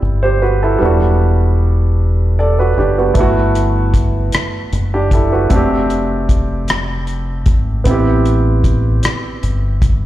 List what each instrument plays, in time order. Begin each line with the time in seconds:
Already playing: grand piano G3 B3 C4 E4
0.02 fingered electric bass G1
0.23 grand piano G4 C5
0.42 grand piano F#4 B4
0.63 grand piano E4 A4
0.79 fingered electric bass E1, grand piano G3 B3
0.83 grand piano D4 F#4
2.39 grand piano A4 D5
2.59 grand piano F#4 B4
2.77 fingered electric bass F#1, grand piano D4 G4
2.98 grand piano B3 F#4
3.14 fingered electric bass G1, grand piano A3 B3, kick, closed hi-hat
3.19 grand piano E4 F#4
3.55 closed hi-hat
3.94 kick, closed hi-hat
4.32 cross-stick, closed hi-hat
4.73 fingered electric bass F#1, closed hi-hat
4.94 grand piano D4 G4
5.11 grand piano E4 A4, kick, closed hi-hat
5.32 grand piano F#4 B4
5.49 fingered electric bass F1, grand piano A3 C4 D4, kick, closed hi-hat
5.55 grand piano G4
5.90 closed hi-hat
6.29 kick, closed hi-hat
6.68 cross-stick, closed hi-hat
7.07 closed hi-hat
7.46 fingered electric bass G#1, kick, closed hi-hat
7.84 fingered electric bass A1, grand piano B3 C4, kick, closed hi-hat
7.89 grand piano E4 G4
8.25 closed hi-hat
8.64 kick, closed hi-hat
9.03 cross-stick, closed hi-hat
9.43 fingered electric bass G1, closed hi-hat
9.82 kick, closed hi-hat